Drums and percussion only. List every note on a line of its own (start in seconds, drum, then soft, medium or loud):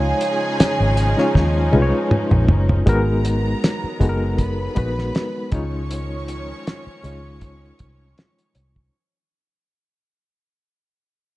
0.21 closed hi-hat medium
0.60 snare loud
0.60 closed hi-hat loud
0.97 closed hi-hat medium
1.18 snare soft
1.35 kick medium
1.35 snare medium
1.73 high tom medium
2.11 mid tom medium
2.31 mid tom medium
2.48 floor tom loud
2.69 floor tom medium
2.87 kick loud
2.87 closed hi-hat medium
3.25 closed hi-hat medium
3.64 snare loud
3.64 closed hi-hat loud
4.01 kick medium
4.01 closed hi-hat medium
4.38 kick medium
4.38 closed hi-hat medium
4.76 kick medium
4.76 closed hi-hat medium
4.99 snare soft
5.15 snare loud
5.15 closed hi-hat medium
5.52 kick loud
5.52 closed hi-hat medium
5.91 closed hi-hat medium
6.28 closed hi-hat medium
6.67 snare loud
6.67 closed hi-hat medium
7.04 closed hi-hat medium
7.41 kick medium
7.41 closed hi-hat medium
7.79 kick medium
7.79 closed hi-hat medium
8.18 snare loud
8.18 closed hi-hat medium
8.39 closed hi-hat medium
8.55 closed hi-hat medium
8.76 kick medium